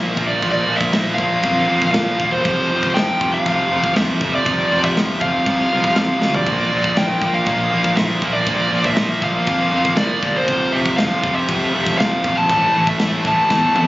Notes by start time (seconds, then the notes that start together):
Already playing: A#2 F3 A#3 E5
0.17 A#1 A#2 F3 A#3, kick
0.27 D5
0.42 A#1 A#2 F3 A#3, kick, crash
0.52 D5
0.68 A#1 A#2 F3 A#3
0.77 E5, kick
0.93 A#1 A#2 F3 A#3, snare, crash
1.15 A#1 A#2 F3 A#3 F5, kick
1.42 F2 A#2 F3 A#3, kick, crash
1.67 F2 A#2 F3 A#3
1.82 kick
1.91 A#2 F3 A#3 F5, snare, crash
2.19 E1 A#2 F3 A#3, kick
2.32 C5
2.45 F1 F2 C3 F3, kick, crash
2.70 F1 F2 C3 F3
2.83 kick
2.94 F1 F2 C3 F3 G5, snare, crash
3.20 F1 F2 C3 F3, kick
3.34 F5
3.46 F1 F2 C3 F3, kick, crash
3.71 F1 F2 C3 F3
3.84 kick
3.96 F1 F2 C3 F3 E5, snare, crash
4.21 F1 F2 C3 F3, kick
4.35 D5
4.46 F1 F2 C3 F3, kick, crash
4.72 F1 F2 C3 F3
4.84 E5, kick
4.97 F1 F2 C3 F3, snare, crash
5.19 F1 F2 C3 F5, kick
5.24 F2 C3 F3
5.46 C2 F2 C3 F3, kick, crash
5.73 C2 F2 C3 F3
5.84 kick
5.96 F2 C3 F3 F5, snare, crash
6.22 D2 F2 C3 F3, snare
6.34 D5, floor tom
6.47 A#1 A#2 F3 A#3, kick, crash
6.72 A#1 A#2 F3 A#3
6.84 kick
6.97 A#1 A#2 F3 A#3 G5, snare, crash
7.22 A#1 A#2 F3 A#3, kick
7.34 F5
7.46 A#1 A#2 F3 A#3, kick, crash
7.73 A#1 A#2 F3 A#3
7.84 kick
7.97 A#1 A#2 F3 A#3 E5, snare, crash
8.22 A#1 A#2 F3 A#3, kick
8.34 D5
8.46 A#1 A#2 F3 A#3, kick, crash
8.72 A#1 A#2 F3 A#3
8.84 E5, kick
8.96 A#1 A#2 F3 A#3, snare, crash
9.22 A#1 A#2 F3 A#3 F5, kick
9.47 F2 A#2 F3 A#3, kick, crash
9.73 F2 A#2 F3 A#3
9.85 kick
9.96 A#2 F3 A#3 D5, snare, crash
10.23 G1 A#2 F3 A#3, kick
10.37 C5
10.48 F1 F2 C3 F3, kick, crash
10.72 F1 F2 C3 F3 E5
10.86 kick
10.97 F1 F2 C3 F3 F5, snare, crash
11.23 F1 F2 C3 F3, kick
11.35 E5
11.48 F1 F2 C3 F3, kick, crash
11.73 F1 F2 C3 F3
11.86 kick
11.98 F1 F2 C3 F3 F5, snare, crash
12.24 A#1 F2 C3 F3, kick
12.38 A5
12.49 A1 A2 E3 A3, kick, crash
12.74 A1 A2 E3 A3
12.87 E5, kick
12.99 A1 A2 E3 A3, snare, crash
13.25 A1 A2 E3 A3 A5, kick
13.50 E2 A2 E3 A3, kick, snare
13.75 E2 A2 E3 A3, high tom